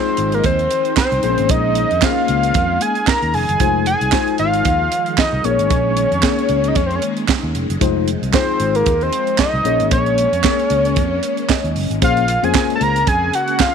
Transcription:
Already playing: D#3 F3 G#3 D#4 F4 G#4 C5
0.17 G#1, closed hi-hat
0.32 A#4, closed hi-hat
0.44 D#2 C5, kick, closed hi-hat
0.59 closed hi-hat
0.71 closed hi-hat
0.85 closed hi-hat
0.97 C5, kick, snare, clap
1.12 C2, closed hi-hat
1.23 A#1 A#3 C4 C#4 G#4 C5, closed hi-hat
1.30 C#4
1.38 G#1, closed hi-hat
1.49 A#1 D#5, kick, closed hi-hat
1.75 closed hi-hat
1.91 F2, closed hi-hat
2.02 A#3 C#4 G#4 C5 F5, kick, snare, clap
2.28 C#2, closed hi-hat
2.43 closed hi-hat
2.54 F2, kick, closed hi-hat
2.81 G#5, closed hi-hat
2.95 closed hi-hat
3.07 A#5, kick, snare, clap
3.22 D#2, closed hi-hat
3.34 F1 G#5, open hi-hat
3.49 F#1, closed hi-hat
3.60 F1 F3 G#3 D#4 F4 C5, kick, closed hi-hat
3.86 G#5, closed hi-hat
4.01 C2, closed hi-hat
4.12 G#3 D#4 F4 C5, kick, snare, clap
4.28 closed hi-hat
4.38 G#1 F5, closed hi-hat
4.54 closed hi-hat
4.65 D#2, kick, closed hi-hat
4.92 closed hi-hat
5.06 closed hi-hat
5.18 D#5, kick, snare, clap
5.33 C2
5.44 A#1 A#3 C#4 G#4 A#4 C#5, closed hi-hat
5.51 C#5
5.59 G#1, closed hi-hat
5.70 A#1, kick, closed hi-hat
5.97 closed hi-hat
6.12 F2, closed hi-hat
6.23 A#3 C4 G#4 C#5, kick, snare, clap
6.30 C#4
6.39 closed hi-hat
6.49 C#2, closed hi-hat
6.64 D#5, closed hi-hat
6.75 F2 C#5, kick, closed hi-hat
6.86 C5
6.91 closed hi-hat
6.95 C#5
7.02 closed hi-hat
7.17 closed hi-hat
7.29 kick, snare, clap
7.43 D#2
7.55 F1, closed hi-hat
7.70 F#1, closed hi-hat
7.81 F1 F3 G#3 D#4 F4 C5, kick, closed hi-hat
8.08 closed hi-hat
8.22 C2, closed hi-hat
8.33 G#3 D#4 F4 G#4 C5, kick, snare, clap
8.60 G#1, closed hi-hat
8.75 A#4, closed hi-hat
8.86 D#2, kick, closed hi-hat
9.01 C5, closed hi-hat
9.13 closed hi-hat
9.27 closed hi-hat
9.38 D#5, kick, snare, clap
9.54 C2
9.65 A#1 A#3 C#4 G#4 C#5, closed hi-hat
9.80 G#1, closed hi-hat
9.91 A#1 C#5, kick, closed hi-hat
10.06 closed hi-hat
10.18 closed hi-hat
10.32 F2, closed hi-hat
10.44 A#3 C#4 G#4 C#5, kick, snare, clap
10.59 closed hi-hat
10.70 C#2, closed hi-hat
10.85 closed hi-hat
10.96 F2, kick, closed hi-hat
11.23 closed hi-hat
11.37 closed hi-hat
11.49 D#5, kick, snare, clap
11.64 D#2, closed hi-hat
11.75 F#1, open hi-hat
11.90 G#1, closed hi-hat
12.02 A#1 C#3 G#3 A#3 C#4 F4 G#4 C5 F5, kick, closed hi-hat
12.17 closed hi-hat
12.28 closed hi-hat
12.43 F2 A#3 C#4 F4 G#4 C5 G#5, closed hi-hat
12.55 kick, snare, clap
12.70 closed hi-hat
12.75 A5
12.81 C#2 A#5, closed hi-hat
12.96 closed hi-hat
13.07 F2 G#5, kick, closed hi-hat
13.33 F#5, closed hi-hat
13.48 closed hi-hat
13.60 F5, kick, snare, clap

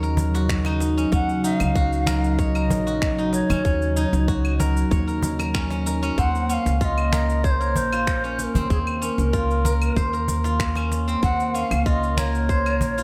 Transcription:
Already playing: D#2 C#3 F#3 C#4 D#4 F#4 A#4 C#5
0.03 A#4, cabasa
0.17 cajon bass, cabasa
0.34 F#4, cajon slap, cabasa
0.49 finger snap, kick, cabasa
0.65 D#4, cajon slap, cabasa, claves
0.80 cajon slap, cabasa
0.97 C#4, cabasa
1.12 D#2 C#4 F#5, kick, cajon slap, cabasa
1.29 cabasa
1.44 D#4 E5, cabasa
1.57 C#2 F5, cajon slap, cabasa, claves
1.76 F#4, kick, cabasa
1.93 cabasa
2.07 A#4, finger snap, cajon bass, cabasa
2.24 cabasa
2.32 F5
2.39 C#5 D#5, kick, cabasa
2.55 A#4, cabasa, claves
2.70 A#1, cajon bass, cabasa
2.87 F#4, cabasa
3.02 finger snap, kick, cabasa
3.18 D#4, cabasa
3.33 C#5, cajon slap, cabasa
3.50 D#2 C#4, cajon bass, cabasa, claves
3.65 D#2 C#4, kick, cajon slap, cabasa
3.82 cabasa
3.96 D#4, cabasa
4.13 C#2, cajon slap, cabasa
4.28 F#4, kick, cabasa
4.45 cabasa, claves
4.59 A#4, cajon bass, cabasa
4.77 cabasa
4.91 D#2 C#5, kick, cabasa
5.07 A#4, cabasa
5.22 cajon bass, cabasa
5.39 A#4, cajon slap, cabasa, claves
5.54 C#4, finger snap, kick, cabasa
5.70 C#4, cajon slap, cabasa
5.86 A#4, cajon slap, cabasa
6.03 C#4, cabasa
6.18 D#2 A#3 C4 F#5, kick, cajon slap, cabasa
6.35 cabasa
6.49 C#4 F5 F#5, cabasa
6.66 C#2, cajon slap, cabasa
6.81 F4 D#5 F5, kick, cabasa
6.98 cabasa, claves
7.13 A#4, finger snap, cajon bass, cabasa
7.30 cabasa
7.44 C5 C#5, kick, cabasa
7.51 C5
7.59 A#4 C#5, cabasa
7.76 A#1 C5, cajon bass, cabasa
7.92 F4, cabasa, claves
8.07 finger snap, kick, cabasa
8.24 C#4, cabasa
8.39 C5, cajon slap, cabasa
8.44 A#4
8.55 D#2 C4, cajon bass, cabasa
8.70 D#2 C4 G#4, kick, cajon slap, cabasa
8.87 cabasa, claves
9.02 C#4 A#4, cabasa
9.18 C#2, cajon slap, cabasa
9.33 F4, kick, cabasa
9.51 cabasa
9.65 A#4, cajon bass, cabasa
9.82 cabasa, claves
9.96 D#2 C5, kick, cabasa
10.13 A#4, cabasa
10.28 cajon bass, cabasa
10.44 F4, cajon slap, cabasa
10.60 finger snap, kick, cabasa
10.75 C#4, cajon slap, cabasa, claves
10.92 cajon slap, cabasa
11.08 C4, cabasa
11.23 D#2 C4 F#5, kick, cajon slap, cabasa
11.40 cabasa
11.54 C#4 F5, cabasa
11.71 C#2, cajon slap, cabasa, claves
11.86 F4 D#5, kick, cabasa
12.03 cabasa
12.17 A#4 C#5, finger snap, cajon bass, cabasa
12.35 cabasa
12.49 C5, kick, cabasa
12.66 A#4, cabasa, claves
12.81 A#1, cajon bass, cabasa
12.98 F4, cabasa

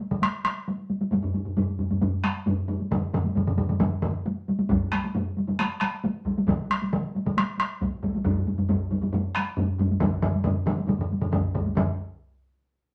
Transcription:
0.11 taiko mid, taiko high
0.22 taiko rim, taiko high
0.45 taiko rim, taiko high
0.68 taiko high
0.90 taiko high
1.01 taiko high
1.11 taiko low-mid, taiko high
1.23 taiko low-mid
1.34 taiko low-mid, taiko high
1.45 taiko low-mid
1.57 taiko low-mid, taiko high
1.79 taiko low-mid, taiko high
1.91 taiko low-mid, taiko high
2.02 taiko low-mid, taiko high
2.24 taiko rim, taiko high
2.46 taiko low-mid, taiko high
2.68 taiko low-mid, taiko high
2.80 taiko high
2.91 taiko low-mid, taiko mid, taiko high
3.14 taiko low-mid, taiko mid, taiko high
3.24 taiko high
3.35 taiko low-mid, taiko mid, taiko high
3.47 taiko low-mid, taiko mid
3.57 taiko low-mid, taiko mid, taiko high
3.69 taiko low-mid, taiko mid, taiko high
3.80 taiko low-mid, taiko mid, taiko high
4.02 taiko low-mid, taiko mid, taiko high
4.26 taiko high
4.48 taiko high
4.59 taiko high
4.69 taiko, taiko low-mid, taiko high
4.92 taiko rim, taiko high
5.04 taiko high
5.15 taiko low-mid, taiko high
5.37 taiko high
5.47 taiko low-mid, taiko high
5.59 taiko rim, taiko high
5.81 taiko rim, taiko high
6.04 taiko high
6.25 taiko, taiko high
6.38 taiko high
6.48 taiko, taiko mid, taiko high
6.70 taiko rim, taiko high
6.82 taiko high
6.93 taiko mid, taiko high
7.15 taiko high
7.26 taiko mid, taiko high
7.37 taiko rim, taiko high
7.59 taiko rim, taiko high
7.81 taiko, taiko high
8.03 taiko, taiko high
8.15 taiko high
8.25 taiko, taiko low-mid, taiko high
8.37 taiko low-mid
8.47 taiko low-mid, taiko high
8.58 taiko low-mid, taiko high
8.69 taiko, taiko low-mid, taiko high
8.91 taiko low-mid, taiko high
9.02 taiko low-mid, taiko high
9.13 taiko low-mid, taiko high
9.35 taiko rim, taiko high
9.57 taiko low-mid, taiko high
9.78 taiko, taiko low-mid, taiko high
9.91 taiko high
10.00 taiko, taiko low-mid, taiko mid, taiko high
10.22 taiko low-mid, taiko mid, taiko high
10.34 taiko high
10.44 taiko low-mid, taiko mid, taiko high
10.66 taiko low-mid, taiko mid, taiko high
10.78 taiko high
10.87 taiko low-mid, taiko mid, taiko high
10.98 taiko low-mid, taiko mid
11.12 taiko high
11.21 taiko low-mid, taiko mid, taiko high
11.32 taiko, taiko low-mid, taiko mid, taiko high
11.54 taiko, taiko low-mid, taiko mid, taiko high
11.66 taiko high
11.75 taiko, taiko low-mid, taiko mid, taiko high

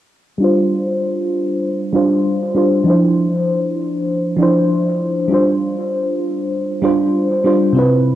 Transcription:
0.38 G3 D4
0.42 F4 C5
1.93 G3 D4 F4 C5
2.54 G3 D4 F4 C5
2.84 F3 D4 E4
2.90 C5
4.36 F3 D4
4.41 E4 C5
5.28 G3 D4 F4
5.34 C5
6.82 G3 D4 F4 C5
7.44 G3 D4 F4 C5
7.73 C3 C4
7.77 E4 B4

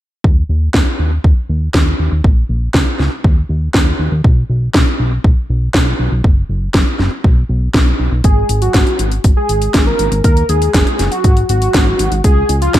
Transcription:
0.24 D#2, kick
0.49 D#2
0.74 D#2, kick, snare
0.99 D#2
1.24 D#2, kick
1.49 D#2
1.74 D#2, kick, snare
1.99 D#2
2.12 D#2
2.24 A#1, kick
2.49 A#1
2.74 C#2, kick, snare
2.99 C#2, snare
3.24 D#2, kick
3.49 D#2
3.74 D#2, kick, snare
3.99 D#2
4.12 D#2
4.24 B1, kick
4.50 B1
4.74 B1, kick, snare
5.00 B1
5.24 B1, kick
5.50 B1
5.74 B1, kick, snare
6.00 B1
6.12 B1
6.24 F#1, kick
6.49 F#1
6.74 F#1, kick, snare
6.99 F#1, snare
7.24 B1, kick
7.49 B1
7.74 B1, kick, snare
8.00 B1
8.12 B1
8.24 G#1 G#4, kick, closed hi-hat
8.49 G#1, closed hi-hat
8.62 F#4, closed hi-hat
8.74 G#1, kick, snare, closed hi-hat
8.87 closed hi-hat
8.99 G#1, closed hi-hat
9.12 closed hi-hat
9.24 G#1, kick, closed hi-hat
9.37 G#4
9.49 G#1, closed hi-hat
9.62 closed hi-hat
9.74 G#1, kick, snare, closed hi-hat
9.87 A#4
9.99 G#1, closed hi-hat
10.12 G#1, closed hi-hat
10.24 D#2 A#4, kick, closed hi-hat
10.37 closed hi-hat
10.49 D#2 G#4, closed hi-hat
10.62 closed hi-hat
10.74 F#1 G#4, kick, snare, closed hi-hat
10.87 closed hi-hat
10.99 F#1, snare, closed hi-hat
11.12 F#4, closed hi-hat
11.24 G#1, kick, closed hi-hat
11.37 closed hi-hat
11.49 G#1 F#4, closed hi-hat
11.62 closed hi-hat
11.74 G#1, kick, snare, closed hi-hat
11.99 G#1, closed hi-hat
12.12 G#1, closed hi-hat
12.24 C#2 G#4, kick, closed hi-hat
12.49 C#2, closed hi-hat
12.62 F4, closed hi-hat
12.74 C#2, kick, snare, closed hi-hat

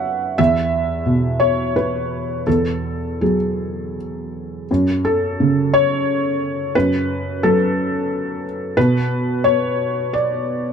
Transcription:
Already playing: F#2 F#3 B4 C#5 E5 F#5
0.38 E2 E5
1.06 B2
1.40 C#5
1.76 B4
2.47 E2 A4
3.21 F#3 G#4
4.71 F#2
5.05 A4
5.40 C#3
5.74 C#5
6.75 F#2 B4
7.43 F#3 A4
8.77 B2 B4
9.44 B3 C#5
10.13 D5

